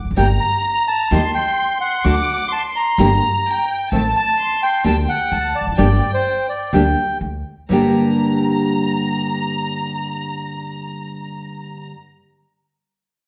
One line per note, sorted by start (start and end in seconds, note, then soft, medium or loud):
0.05 0.10 F1 medium
0.11 0.17 F#1 medium
0.16 0.37 G1 medium
0.16 0.25 D3 medium
0.16 0.26 G3 medium
0.16 0.26 A#3 medium
0.16 0.26 D4 medium
0.16 0.26 G4 medium
0.16 0.28 G5 medium
0.16 1.07 A#5 loud
0.40 0.89 A#5 loud
0.88 1.31 A5 loud
1.11 1.31 D#2 loud
1.11 1.20 D#3 medium
1.11 1.20 G3 medium
1.11 1.20 A#3 medium
1.11 1.20 D#4 loud
1.11 1.21 G4 loud
1.11 2.05 C6 loud
1.34 1.78 G5 medium
1.81 2.47 F#5 loud
2.05 2.24 D2 medium
2.05 2.14 D3 medium
2.05 2.14 A3 loud
2.05 2.14 D4 medium
2.05 2.14 F#4 medium
2.05 2.52 D6 loud
2.52 2.63 A5 medium
2.52 2.98 C6 loud
2.76 3.65 A#5 medium
2.98 3.18 G1 loud
2.98 3.07 D3 medium
2.98 3.08 G3 medium
2.98 3.08 A#3 medium
2.98 3.08 D4 medium
2.98 3.08 G4 medium
2.98 3.45 A#5 medium
3.47 3.93 G5 loud
3.92 4.11 A1 medium
3.92 4.01 D#3 medium
3.92 4.01 A3 loud
3.92 4.01 C4 loud
3.92 4.35 A5 loud
4.16 4.63 A5 loud
4.38 4.81 C6 loud
4.63 4.84 G5 loud
4.84 5.04 D2 loud
4.84 4.93 D3 medium
4.84 4.94 A#3 medium
4.84 4.94 D4 medium
4.84 4.94 G4 loud
4.84 5.31 G5 medium
4.84 4.96 A5 medium
5.09 5.57 F#5 loud
5.32 5.51 D2 medium
5.32 5.79 A5 medium
5.56 5.66 D5 medium
5.61 5.67 E1 medium
5.67 5.72 F1 medium
5.72 5.78 F#1 medium
5.77 5.98 G1 loud
5.77 5.87 D3 medium
5.77 5.87 G3 medium
5.77 5.87 A#3 medium
5.77 5.87 D4 medium
5.77 5.88 G4 loud
5.77 6.11 D5 medium
5.77 6.73 G5 medium
6.14 6.47 C5 medium
6.49 6.74 D5 medium
6.73 6.93 D2 loud
6.73 6.82 D3 medium
6.73 6.82 G3 medium
6.73 6.82 A#3 medium
6.73 6.83 D4 loud
6.73 6.82 G4 loud
6.73 7.18 G5 medium
7.21 7.41 D2 medium
7.68 7.89 G1 medium
7.68 11.91 G2 medium
7.68 11.92 D3 medium
7.68 11.93 G3 medium
7.68 11.93 A#3 medium
7.68 11.94 D4 medium
7.68 11.86 A#5 medium
7.73 11.95 G4 medium